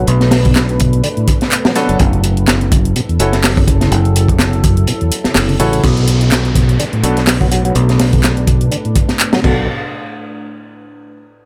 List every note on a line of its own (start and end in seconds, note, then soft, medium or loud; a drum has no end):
0.00 1.96 A3 medium
0.00 1.96 D4 medium
0.00 1.96 B4 medium
0.07 1.01 B1 loud
0.07 0.55 B2 loud
0.07 closed hi-hat medium
0.07 closed hi-hat soft
0.21 snare soft
0.21 closed hi-hat soft
0.31 snare loud
0.31 closed hi-hat medium
0.31 open hi-hat medium
0.45 kick medium
0.45 closed hi-hat soft
0.56 snare loud
0.56 clap loud
0.56 closed hi-hat soft
0.56 closed hi-hat medium
0.69 closed hi-hat soft
0.80 1.03 B2 medium
0.80 kick loud
0.80 closed hi-hat medium
0.93 closed hi-hat soft
1.04 1.09 D3 medium
1.04 closed hi-hat medium
1.04 closed hi-hat soft
1.17 1.27 A2 loud
1.17 closed hi-hat soft
1.28 kick loud
1.28 closed hi-hat medium
1.41 snare medium
1.41 closed hi-hat soft
1.52 clap loud
1.52 closed hi-hat soft
1.52 closed hi-hat medium
1.65 1.72 F#3 medium
1.65 snare loud
1.65 closed hi-hat soft
1.76 1.88 F#3 medium
1.76 1.96 B3 loud
1.76 1.96 D4 medium
1.76 1.96 F#4 medium
1.76 1.96 A4 loud
1.76 snare soft
1.76 closed hi-hat medium
1.89 1.98 F#1 medium
1.89 1.99 F#3 medium
1.89 closed hi-hat soft
1.99 2.93 F#1 loud
1.99 2.47 F#2 loud
1.99 5.80 F#3 medium
1.99 5.80 E4 medium
1.99 5.80 A4 loud
1.99 kick loud
1.99 closed hi-hat medium
1.99 closed hi-hat soft
2.13 closed hi-hat soft
2.24 closed hi-hat medium
2.37 closed hi-hat soft
2.48 snare loud
2.48 clap loud
2.48 closed hi-hat medium
2.48 closed hi-hat soft
2.61 closed hi-hat soft
2.72 2.95 F#2 medium
2.72 kick loud
2.72 closed hi-hat medium
2.85 closed hi-hat soft
2.96 3.01 B2 medium
2.96 closed hi-hat soft
2.96 closed hi-hat medium
3.09 3.19 E2 loud
3.09 closed hi-hat soft
3.19 3.89 F#1 medium
3.19 3.33 C#4 medium
3.19 3.33 E4 medium
3.19 3.33 F#4 medium
3.19 3.33 A4 medium
3.19 closed hi-hat medium
3.33 snare soft
3.33 closed hi-hat soft
3.44 snare loud
3.44 clap loud
3.44 closed hi-hat soft
3.44 open hi-hat medium
3.57 3.64 C#3 medium
3.57 kick loud
3.57 closed hi-hat soft
3.67 3.80 C#3 medium
3.67 kick loud
3.67 closed hi-hat medium
3.81 3.91 C#3 medium
3.81 snare medium
3.81 closed hi-hat soft
3.92 4.85 F#1 loud
3.92 4.39 F#2 loud
3.92 closed hi-hat soft
3.92 closed hi-hat medium
4.05 closed hi-hat soft
4.16 closed hi-hat medium
4.28 kick medium
4.28 closed hi-hat soft
4.39 snare loud
4.39 clap loud
4.39 closed hi-hat medium
4.39 closed hi-hat soft
4.53 closed hi-hat soft
4.64 4.87 F#2 medium
4.64 kick medium
4.64 closed hi-hat medium
4.77 closed hi-hat soft
4.87 4.93 B2 medium
4.87 closed hi-hat medium
4.87 closed hi-hat soft
5.01 5.11 E2 loud
5.01 closed hi-hat soft
5.12 closed hi-hat medium
5.24 muted fingered electric bass stroke soft
5.24 snare medium
5.24 closed hi-hat soft
5.35 5.56 F#1 medium
5.35 snare medium
5.35 clap loud
5.35 closed hi-hat soft
5.35 open hi-hat medium
5.49 5.56 C#3 medium
5.49 closed hi-hat soft
5.60 5.80 A1 loud
5.60 5.72 C#3 medium
5.60 5.80 C#4 loud
5.60 5.80 E4 medium
5.60 5.80 F#4 medium
5.60 5.80 A4 loud
5.60 closed hi-hat medium
5.73 5.83 C#3 medium
5.73 closed hi-hat soft
5.83 6.77 B1 loud
5.83 6.31 B2 medium
5.83 9.40 A3 medium
5.83 9.40 D4 medium
5.83 9.40 B4 medium
5.83 kick loud
5.83 closed hi-hat soft
5.83 closed hi-hat medium
5.83 downlifter medium
5.97 closed hi-hat soft
6.08 closed hi-hat medium
6.21 closed hi-hat soft
6.32 snare loud
6.32 clap loud
6.32 closed hi-hat soft
6.32 closed hi-hat medium
6.45 closed hi-hat soft
6.55 6.79 B2 medium
6.55 kick medium
6.55 closed hi-hat medium
6.69 closed hi-hat soft
6.79 6.85 D3 medium
6.79 closed hi-hat soft
6.79 closed hi-hat medium
6.93 7.03 A2 loud
6.93 closed hi-hat soft
7.03 7.73 B1 medium
7.03 7.17 B3 medium
7.03 7.17 D4 medium
7.03 7.17 F#4 medium
7.03 7.17 A4 medium
7.03 closed hi-hat medium
7.17 snare soft
7.17 closed hi-hat soft
7.27 snare loud
7.27 clap loud
7.27 closed hi-hat soft
7.27 open hi-hat medium
7.41 7.48 F#3 medium
7.41 kick medium
7.41 closed hi-hat soft
7.51 7.64 F#3 medium
7.51 closed hi-hat medium
7.65 7.75 F#3 medium
7.65 closed hi-hat soft
7.75 8.69 B1 loud
7.75 8.22 B2 loud
7.75 closed hi-hat medium
7.75 closed hi-hat soft
7.89 snare soft
7.89 closed hi-hat soft
7.99 snare loud
7.99 closed hi-hat medium
7.99 open hi-hat medium
8.13 kick medium
8.13 closed hi-hat soft
8.24 snare loud
8.24 clap loud
8.24 closed hi-hat soft
8.24 closed hi-hat medium
8.37 closed hi-hat soft
8.47 8.71 B2 medium
8.47 kick loud
8.47 closed hi-hat medium
8.61 closed hi-hat soft
8.71 8.77 D3 medium
8.71 closed hi-hat soft
8.71 closed hi-hat medium
8.85 8.95 A2 loud
8.85 closed hi-hat soft
8.96 kick loud
8.96 closed hi-hat medium
9.09 snare medium
9.09 closed hi-hat soft
9.20 clap loud
9.20 closed hi-hat medium
9.20 closed hi-hat soft
9.33 9.40 F#3 medium
9.33 snare loud
9.33 closed hi-hat soft
9.44 9.66 B1 medium
9.44 9.66 B2 loud
9.44 9.62 B3 medium
9.44 9.62 D4 medium
9.44 9.62 F#4 medium
9.44 9.62 A4 medium
9.44 kick loud
9.44 crash medium